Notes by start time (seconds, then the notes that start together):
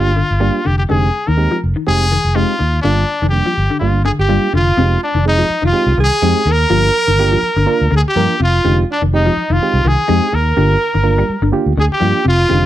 Already playing: G1 A#3 D4 F4 G4
0.16 D3
0.31 G1
0.40 G3 A#3 D4 F4 G4
0.65 F1 D3 G4
0.78 G4
0.89 F1 D3 G#3 C4 D#4 G4 G#4
1.27 D#2 D#3 A#4
1.37 G#3 C4 D#4 G4
1.51 F3
1.64 F1
1.76 D#3
1.87 F1 G#3 C4 D#4 G4 G#4
2.12 D#3
2.24 F1
2.35 G#3 C4 D#4 F4 G4
2.59 D#2 D#3
2.81 G1 D3 G3 A#3 D4 F4
3.22 F1 D#3
3.29 G3 A#3 D4 G4
3.46 F3
3.57 G1
3.70 D3
3.79 G1 G3 A#3 D4 F4
4.05 D3 G#4
4.19 G1 G4
4.29 G3 A#3 D4 F4
4.53 F1 D3 F4
4.77 F1 C3 G#3 C4 D#4 G4
5.03 D4
5.15 F1 D#3
5.25 G#3 C4 D#4 G#4
5.38 F3
5.50 muted fingered electric bass stroke
5.62 F1 D#3 F4
5.73 G#3 C4 D#4 G4
5.86 C2
5.98 C2 D#3 G#4
6.04 G#4
6.12 muted fingered electric bass stroke
6.22 F2 G#3 C4 D#4 G4
6.46 D#2 D#3 A#4
6.52 A#4
6.70 G1 F3 A#3 D4 F4 G4
7.07 G1 D#3
7.19 A#3 D4 F4 G4
7.32 F3
7.43 muted fingered electric bass stroke
7.56 G1 D3
7.66 A#3 D4 F4 A#4
7.81 D2
7.91 D2 D3
7.95 G#4
8.06 G4, muted fingered electric bass stroke
8.16 G2 F3 A#3 D4 F4 A#4
8.40 F1 C3 F4
8.65 F1 D3 G#3 C4 D#4 G4
8.91 D4
9.02 F1 D#3
9.14 G#3 C4 D#4 G4
9.26 F3
9.37 muted fingered electric bass stroke
9.50 F1 D#3 F4
9.63 G#3 C4 D#4 G4
9.74 C2
9.84 C2 D#3 G#4
9.89 G#4
9.98 muted fingered electric bass stroke
10.08 F2 G#3 C4 D#4 G4
10.33 D#2 D#3 A#4
10.57 G1 D3 A#3 D4 F4 G4
10.94 G1 D#3
11.04 A#3 D4 F4 A#4
11.18 G3
11.29 muted fingered electric bass stroke
11.42 G1 D3
11.52 A#3 D4 F4 G4
11.66 D2
11.77 D2 D3 G#4
11.92 G4, muted fingered electric bass stroke
12.00 G2 F3 A#3 D4 F4 G4
12.24 F1 C3 F4
12.49 F1 D3 G#3 C4 D#4 G4